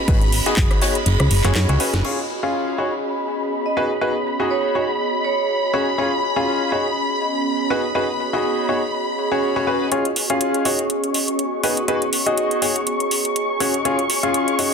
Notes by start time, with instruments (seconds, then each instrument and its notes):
Already playing: ambient pad B3 F#4 C#5, violin section B5
0.08 fm bass G#1, grand piano D#4 F#4 G#4 B4, ambient pad G#4, kick, closed hi-hat, open hi-hat
0.22 closed hi-hat
0.32 open hi-hat, ride
0.46 grand piano D#4 F#4 G#4 D#5, snare, closed hi-hat
0.56 fm bass F#1, kick, snare, clap, closed hi-hat, ride
0.70 cross-stick, snare, closed hi-hat
0.81 grand piano D#4 F#4 G#4 C#5, snare, open hi-hat, ride
0.95 closed hi-hat
1.06 fm bass F#1, snare, closed hi-hat, ride
1.20 fm bass C#2, cross-stick, closed hi-hat
1.31 fm bass F#1, open hi-hat, ride
1.44 fm bass F#1, grand piano C#4 F#4 G#4 C#5, clap, closed hi-hat
1.55 fm bass F#2, snare, clap, closed hi-hat, ride
1.69 fm bass C#2, grand piano C#4 F#4 G#4 C#5, closed hi-hat
1.79 grand piano C#4 F#4 G#4 B4, open hi-hat, ride
1.94 fm bass F#1, snare, closed hi-hat
2.04 grand piano C#4 F4 G#4 C#5, violin section B5, crash
2.43 grand piano C#4 F4 G#4 F5
2.78 ambient pad B3, grand piano D#4 F#4 G#4 C#5
2.93 ambient pad C#5
2.99 ambient pad F#4
3.66 vibraphone D#5
3.77 grand piano D#4 F#4 G#4 B4
4.01 grand piano D#4 F#4 G#4 B4, ambient pad G#4
4.10 ambient pad D#5
4.40 grand piano D#4 F#4 G#4 D#5
4.51 vibraphone C#5
4.64 vibraphone C#5
4.75 grand piano D#4 F#4 G#4 C#5
5.24 vibraphone C#5
5.74 grand piano C#4 F#4 G#4 C#5
5.98 grand piano C#4 F4 G#4 C#5
6.36 grand piano C#4 F4 G#4 F5
6.72 ambient pad B3, grand piano D#4 F#4 G#4 C#5
6.85 ambient pad C#5
6.92 ambient pad F#4
7.70 grand piano D#4 F#4 G#4 B4
7.95 grand piano D#4 F#4 G#4 B4, ambient pad G#4
8.33 grand piano D#4 F#4 G#4 D#5
8.69 grand piano D#4 F#4 G#4 C#5
9.31 grand piano C#4 F#4 G#4 C#5
9.56 grand piano C#4 F#4 G#4 C#5
9.67 grand piano C#4 F#4 G#4 B4
9.91 grand piano C#4 F4 G#4 C#5, violin section C#6, closed hi-hat
10.05 closed hi-hat
10.16 open hi-hat
10.30 grand piano C#4 F4 G#4 F5, closed hi-hat
10.41 closed hi-hat
10.54 closed hi-hat
10.65 ambient pad B3, grand piano D#4 F#4 G#4 C#5, open hi-hat
10.75 ambient pad F#4
10.79 ambient pad C#5, closed hi-hat
10.90 closed hi-hat
11.04 closed hi-hat
11.14 open hi-hat
11.28 closed hi-hat
11.39 closed hi-hat
11.63 grand piano D#4 F#4 G#4 B4, open hi-hat
11.77 closed hi-hat
11.88 grand piano D#4 F#4 G#4 B4, ambient pad G#4, closed hi-hat
12.02 closed hi-hat
12.13 open hi-hat
12.26 grand piano D#4 F#4 G#4 D#5, closed hi-hat
12.38 closed hi-hat
12.51 closed hi-hat
12.62 grand piano D#4 F#4 G#4 C#5, open hi-hat
12.76 closed hi-hat
12.87 closed hi-hat
13.00 closed hi-hat
13.11 open hi-hat
13.25 closed hi-hat
13.36 closed hi-hat
13.60 grand piano C#4 F#4 G#4 C#5, open hi-hat
13.74 closed hi-hat
13.85 grand piano C#4 F4 G#4 C#5, closed hi-hat
13.99 closed hi-hat
14.10 open hi-hat
14.23 grand piano C#4 F4 G#4 F5, closed hi-hat
14.34 closed hi-hat
14.48 closed hi-hat
14.59 grand piano D#4 F#4 G#4 C#5, open hi-hat